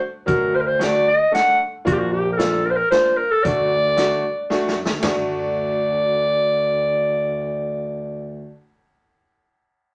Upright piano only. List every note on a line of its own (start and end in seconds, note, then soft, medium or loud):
0.26 0.53 F#3 medium
0.26 0.53 D4 medium
0.26 0.54 F#4 medium
0.79 1.06 A3 medium
0.79 1.06 D4 medium
0.79 1.07 F#4 medium
1.32 1.59 A3 medium
1.32 1.59 D4 medium
1.32 1.59 A4 medium
1.85 2.12 A#3 medium
1.85 2.12 D4 medium
1.85 2.12 F4 medium
2.39 2.65 A#3 medium
2.39 2.65 D4 medium
2.39 2.65 F4 medium
2.92 3.18 A#3 medium
2.92 3.18 D4 medium
2.92 3.18 F4 medium
3.44 3.71 A3 medium
3.44 3.71 D4 medium
3.44 3.71 F#4 medium
3.96 4.23 A3 medium
3.96 4.23 D4 medium
3.96 4.23 F#4 medium
4.50 4.76 A3 medium
4.50 4.76 D4 medium
4.50 4.76 F#4 medium
5.00 8.50 A3 medium
5.00 8.52 D4 medium
5.05 8.55 F#4 medium